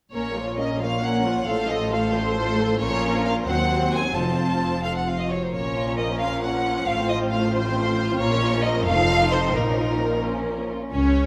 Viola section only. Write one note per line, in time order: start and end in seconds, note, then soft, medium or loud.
0.13 0.34 A#3 soft
0.13 0.35 C#4 soft
0.36 0.59 F3 soft
0.36 0.58 A#3 soft
0.59 0.80 A#3 soft
0.59 0.81 C#4 soft
0.81 1.03 F3 soft
0.81 1.02 A#3 soft
1.03 1.24 A#3 soft
1.03 1.24 C#4 soft
1.25 1.48 F3 soft
1.25 1.48 A#3 soft
1.47 1.68 A3 soft
1.47 1.68 F4 soft
1.69 1.92 F3 soft
1.69 1.91 A4 soft
1.91 2.13 A3 soft
1.91 2.13 F4 soft
2.13 2.36 F3 soft
2.13 2.36 A4 soft
2.36 2.57 A3 soft
2.36 2.57 F4 soft
2.58 2.80 F3 soft
2.58 2.81 A4 soft
2.81 3.44 F3 medium
2.81 3.44 C#4 medium
3.48 4.15 F#3 soft
3.48 4.15 C4 soft
4.16 5.32 F3 soft
4.16 5.30 C4 soft
5.52 8.15 F3 soft
5.52 6.82 C#4 soft
6.87 8.82 F4 soft
8.20 10.69 F3 medium
8.87 10.24 D#4 medium
10.24 10.73 C#4 soft
10.93 11.26 C#4 medium